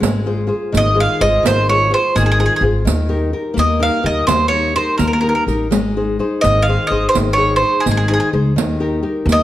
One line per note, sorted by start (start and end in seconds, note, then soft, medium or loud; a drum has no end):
0.00 0.48 G#1 medium
0.00 0.48 G#3 medium
0.00 riq medium
0.26 0.46 F4 soft
0.26 0.46 G#4 soft
0.26 0.47 C5 medium
0.47 0.86 F4 soft
0.47 0.87 G#4 soft
0.47 0.87 C5 soft
0.72 1.05 G#1 loud
0.72 1.19 D#3 medium
0.72 riq soft
0.77 0.98 D#5 medium
0.95 1.19 F4 soft
0.95 1.19 G#4 soft
0.95 1.20 C5 soft
1.00 1.21 F5 medium
1.20 1.36 G#1 medium
1.20 1.59 F4 medium
1.20 1.59 G#4 soft
1.20 1.59 C5 medium
1.20 1.46 D#5 loud
1.43 1.91 G#1 medium
1.43 1.90 D#3 medium
1.43 1.69 C5 loud
1.43 riq medium
1.69 1.89 F4 medium
1.69 1.90 G#4 soft
1.69 1.90 C5 medium
1.69 1.91 C#5 medium
1.90 2.29 F4 soft
1.90 2.29 G#4 soft
1.90 2.29 C5 soft
1.90 2.15 C5 medium
2.15 2.46 G#1 loud
2.15 2.61 D#3 medium
2.15 2.23 G#4 medium
2.15 riq soft
2.26 2.30 G#4 medium
2.32 2.38 G#4 medium
2.39 2.61 F4 soft
2.39 2.61 G#4 soft
2.39 2.45 G#4 medium
2.39 2.62 C5 soft
2.46 2.52 G#4 medium
2.56 2.61 G#4 medium
2.61 2.87 G#1 medium
2.61 2.82 F4 medium
2.61 2.81 G#4 medium
2.61 2.82 C5 medium
2.85 3.32 D#2 medium
2.85 3.32 D#3 medium
2.85 riq medium
3.09 3.32 D#4 medium
3.09 3.32 G4 soft
3.09 3.32 A#4 medium
3.33 3.72 D#4 soft
3.33 3.72 G4 soft
3.33 3.71 A#4 medium
3.54 3.88 D#2 medium
3.54 4.02 A#3 medium
3.54 riq soft
3.59 3.80 D#5 medium
3.79 4.02 D#4 soft
3.79 4.02 G4 soft
3.79 4.02 A#4 medium
3.79 4.04 F5 medium
4.03 4.20 D#2 medium
4.03 4.42 D#4 soft
4.03 4.42 G4 soft
4.03 4.42 A#4 medium
4.03 4.27 D#5 medium
4.27 4.74 D#2 loud
4.27 4.74 A#3 medium
4.27 4.48 C5 medium
4.27 riq medium
4.48 4.74 D#4 soft
4.48 4.75 C#5 medium
4.52 4.75 G4 soft
4.52 4.75 A#4 soft
4.75 5.14 D#4 soft
4.75 5.14 G4 soft
4.75 5.14 A#4 soft
4.75 4.97 C5 medium
4.75 riq soft
4.98 5.30 D#2 loud
4.98 5.46 A#3 medium
4.98 5.05 A#4 medium
4.98 riq soft
5.07 5.12 A#4 soft
5.13 5.19 A#4 medium
5.21 5.46 D#4 soft
5.21 5.47 G4 soft
5.21 5.28 A#4 medium
5.21 5.47 A#4 soft
5.29 5.34 A#4 soft
5.35 5.43 A#4 medium
5.47 5.71 A1 medium
5.47 5.67 D#4 medium
5.47 5.67 G4 soft
5.47 5.67 A#4 medium
5.47 riq soft
5.71 6.18 G#1 medium
5.71 6.18 G#3 medium
5.71 riq medium
5.97 6.18 D#4 soft
5.97 6.18 G#4 soft
5.97 6.19 C5 soft
6.19 6.58 D#4 soft
6.19 6.58 G#4 soft
6.19 6.58 C5 medium
6.41 6.75 G#1 loud
6.41 6.90 D#3 medium
6.41 6.65 D#5 medium
6.41 riq soft
6.62 6.90 F5 medium
6.68 6.89 D#4 soft
6.68 6.89 G#4 soft
6.68 6.89 C5 medium
6.87 7.06 G#1 medium
6.87 7.29 D#4 soft
6.87 7.29 G#4 soft
6.87 7.08 D#5 medium
6.91 7.29 C5 medium
7.09 7.16 C5 medium
7.15 7.61 G#1 medium
7.15 7.61 D#3 medium
7.15 riq medium
7.33 7.56 C#5 medium
7.37 7.61 D#4 soft
7.37 7.61 G#4 soft
7.37 7.61 C5 medium
7.56 7.84 C5 medium
7.62 8.00 D#4 soft
7.62 8.00 G#4 soft
7.62 8.00 C5 medium
7.80 7.90 G#4 medium
7.86 8.17 G#1 loud
7.86 8.32 D#3 medium
7.86 riq soft
7.91 7.96 G#4 medium
7.97 8.06 G#4 medium
8.08 8.32 D#4 medium
8.08 8.12 G#4 medium
8.08 8.32 G#4 soft
8.08 8.32 C5 medium
8.14 8.19 G#4 medium
8.20 8.28 G#4 medium
8.33 8.57 C#2 medium
8.33 8.52 D#4 medium
8.33 8.52 G#4 soft
8.33 8.52 C5 medium
8.56 9.02 D#2 loud
8.56 9.02 D#3 medium
8.56 riq medium
8.80 9.02 D#4 soft
8.80 9.02 G4 medium
8.80 9.02 A#4 medium
9.03 9.41 D#4 soft
9.03 9.40 G4 soft
9.03 9.40 A#4 medium
9.26 9.43 D#2 loud
9.26 9.43 A#3 medium
9.26 riq soft
9.32 9.43 D#5 loud